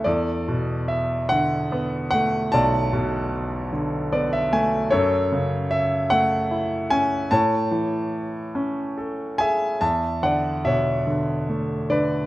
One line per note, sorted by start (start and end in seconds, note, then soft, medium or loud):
0.04 2.50 E2 medium
0.04 1.28 A4 soft
0.04 0.92 D5 medium
0.48 2.09 B2 soft
0.88 1.32 E5 medium
1.29 2.90 D3 soft
1.29 2.09 F#5 medium
1.72 3.30 B3 soft
2.11 3.69 A3 medium
2.11 2.50 F#5 medium
2.52 4.88 B1 medium
2.52 4.11 D5 medium
2.52 4.47 A5 medium
2.93 4.48 B2 medium
3.73 4.88 D3 soft
4.12 4.90 B3 soft
4.12 4.31 D5 medium
4.33 4.51 E5 medium
4.52 4.91 A3 medium
4.52 4.90 G#5 medium
4.91 7.27 F#2 medium
4.91 6.08 A4 medium
4.91 5.74 C#5 medium
5.32 6.87 C#3 medium
5.71 6.12 E5 medium
6.10 7.28 A3 soft
6.10 6.93 F#5 medium
6.51 7.29 E4 soft
6.90 7.30 C#4 medium
6.90 7.32 G#5 medium
7.31 9.78 A2 medium
7.31 9.36 C#5 medium
7.31 9.36 A5 medium
7.71 9.36 E3 soft
8.55 9.78 C#4 soft
8.98 9.79 A4 soft
9.38 9.80 G#4 soft
9.38 9.79 E5 medium
9.38 9.78 G#5 medium
9.81 12.26 E2 soft
9.81 10.21 E5 medium
9.81 10.24 A5 medium
10.23 11.05 D3 soft
10.23 10.63 D5 medium
10.23 10.66 F#5 medium
10.65 12.26 B2 soft
10.65 11.87 C#5 medium
10.65 11.86 E5 medium
11.07 11.88 D3 soft
11.49 12.26 A3 soft
11.90 12.26 D3 soft
11.90 12.26 B4 soft
11.90 12.26 D5 medium